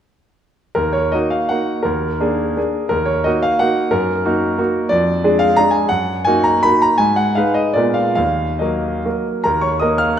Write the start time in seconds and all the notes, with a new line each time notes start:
0.75 D#2 A#4
0.93 C#5
1.12 A#3 D#4 F#4 D#5
1.30 F5
1.49 A#3 D#4 F#4 F#5
1.83 D#2 A#4
2.20 A#3 D4 G#4
2.57 A#3 D4 G#4
2.89 D#2 A#4
3.06 C#5
3.24 A#3 D#4 F#4 D#5
3.42 F5
3.59 A#3 D#4 F#4 F#5
3.91 F#2 A#4
4.25 A#3 D#4 F#4
4.58 A#3 D#4 F#4
4.89 F2 D5
5.24 G#3 D4 G#4
5.39 F5
5.57 G#3 D4 G#4 A#5
5.71 G#5
5.89 F#2 F#5
6.25 A#3 D#4 F#4 G#5
6.44 A#5
6.63 A#3 D#4 F#4 B5
6.82 A#5
6.98 G#2 G#5
7.16 F#5
7.35 G#3 D#4 B4 F5
7.54 D#5
7.74 A#2 G#3 B3 A#4 D5
7.94 F5
8.15 D#2 F5
8.59 F#3 A#3 A#4 D#5
9.05 F#3 A#3 A#4
9.44 D#2 A#4 A#5
9.61 C#5 C#6
9.79 A#3 A#4 D#5 D#6
9.98 F5 F6